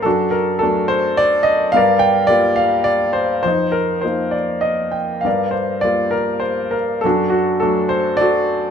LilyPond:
<<
  \new Staff \with { instrumentName = "Grand piano" } { \time 3/4 \key g \minor \tempo 4 = 104 << { a'8 bes'8 a'8 c''8 d''8 ees''8 | f''8 g''8 d''8 f''8 d''8 c''8 | c''8 bes'8 c''8 d''8 ees''8 g''8 | f''8 c''8 d''8 bes'8 c''8 bes'8 |
a'8 fis'8 a'8 c''8 d''4 | } \\ { <d' fis'>4. r4. | <bes' d''>4. r4. | ees'4. r4. | <bes' d''>4. r4. |
<d' fis'>4. r8 <fis' a'>4 | } >> }
  \new Staff \with { instrumentName = "Grand piano" } { \clef bass \time 3/4 \key g \minor fis,4 <fis a d'>2 | g,4 <g bes f'>2 | f,4 <f bes ees'>2 | g,4 <g bes f'>2 |
fis,4 <fis a d'>2 | }
>>